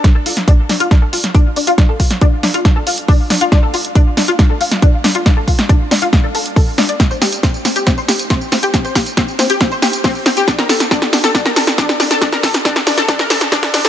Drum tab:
HH |x-oxx-oxx-oxx-ox|x-oxx-oxx-oxo-ox|x-oxx-oxx-oxx-ox|x-oxx-oxx-oxo-ox|
TB |----------------|----------------|----------------|----------------|
SD |o--o--o-o--o----|o--o--o-o-----o-|o-----o-o--o--o-|o--o--o-o-----o-|
BD |o---o---o---o---|o-o-o---o---o---|o---o---o---o---|o-o-o---o---o---|

HH |x-oxx-oxx-oxx-ox|x-oxx-oxx-oxo-ox|x-oxx-oxx-oxx-ox|x-oxx-oxx-oxo-ox|
TB |xxxxxxxxxxxxxxxx|xxxxxxxxxxxxxxxx|xxxxxxxxxxxxxxxx|xxxxxxxxxxxxxxxx|
SD |o-o-o-o-o-o-o-o-|o-o-o-o-o-o-o-o-|oooooooooooooooo|oooooooooooooooo|
BD |o---o---o---o---|o-o-o---o---o---|o---o---o---o---|o-o-o---o---o---|